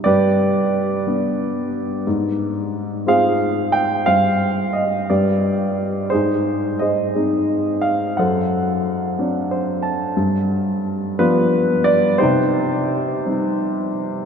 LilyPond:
<<
  \new Staff \with { instrumentName = "Grand piano" } { \time 6/8 \key c \minor \tempo 4. = 59 << { d''2~ d''8 r8 | r4. f''4 g''8 | f''4 ees''8 d''4 r8 | c''4 ees''4. f''8 |
fis''2 c''8 a''8 | r4. b'4 d''8 | c''2~ c''8 r8 | } \\ { <g' b'>2~ <g' b'>8 r8 | r4. <aes' c''>4. | c''4. <g' b'>4. | <ees' aes'>4 <aes' c''>4. r8 |
<a' c''>2 r4 | r4. <d' f'>4. | <ees' g'>2~ <ees' g'>8 r8 | } >> }
  \new Staff \with { instrumentName = "Grand piano" } { \clef bass \time 6/8 \key c \minor g,4. <g b d'>4. | aes,4. <aes c' f'>4. | g,4. g,4. | aes,4. <aes c' ees'>4. |
fis,4. <fis c' d'>4. | g,4. <f g b>4. | c4. <g c' ees'>4. | }
>>